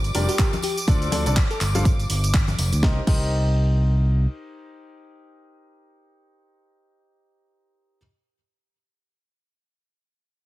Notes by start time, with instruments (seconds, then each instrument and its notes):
Already playing: fingered electric bass G1, violin section D6
0.04 closed hi-hat, tambourine
0.15 fingered electric bass F1, grand piano G3 D4 F4 G4 A#4 D5, open hi-hat, tambourine
0.29 fm electric piano G4, closed hi-hat, tambourine
0.39 grand piano D3 D4 G4 A#4 G5, kick, clap, closed hi-hat
0.53 closed hi-hat, tambourine, high conga
0.62 fm electric piano G4, open hi-hat, tambourine
0.78 closed hi-hat, tambourine
0.88 fingered electric bass D2, grand piano D3 D4 F4 A4 C5 D5, kick, closed hi-hat, tambourine
1.02 closed hi-hat, tambourine
1.12 fingered electric bass D2, grand piano D3 D4 F4 A4 C5 D5, open hi-hat, tambourine, high conga
1.26 fingered electric bass C2, grand piano D3 D4 F4 A4 C5 D5, closed hi-hat, tambourine
1.37 kick, clap, closed hi-hat, tambourine
1.50 fm electric piano A4, closed hi-hat, tambourine
1.61 fingered electric bass G1, clap, open hi-hat, tambourine
1.75 grand piano G3 D4 F4 A4 C5 F5, closed hi-hat, tambourine, high conga
1.85 kick, closed hi-hat, tambourine
1.99 closed hi-hat, tambourine
2.10 fingered electric bass G1, open hi-hat, tambourine
2.23 closed hi-hat, tambourine
2.34 kick, clap, closed hi-hat
2.48 closed hi-hat, tambourine, high conga
2.58 fingered electric bass F1, open hi-hat, tambourine
2.72 fingered electric bass D2, closed hi-hat, tambourine
2.83 fingered electric bass C2, grand piano D#4 G4 A#4 C5 D#5, kick, snare
3.07 fingered electric bass C2, grand piano D#4 G4 A#4 C5 D#5, kick, crash